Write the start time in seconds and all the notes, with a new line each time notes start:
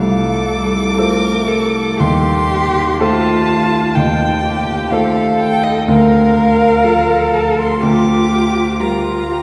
Already playing: A3 F4 A4 C5
0.00 C2 D6
0.97 A3 F4 A4 A#4 C5
1.47 A4
1.98 D#2 G4 C6
3.00 A3 F4 A4 C5 A5
3.95 D#2 D#4 G5
4.45 G4
4.91 A3 F4 A4 C5 F5
5.39 G5
5.63 D#5
5.88 D2 A#4 F5
6.84 F3 F4 A4 A#4
7.34 A5
7.59 C6
7.81 D2 F4 G4 D6
8.79 G3 F4 A#4 A#5
9.31 G4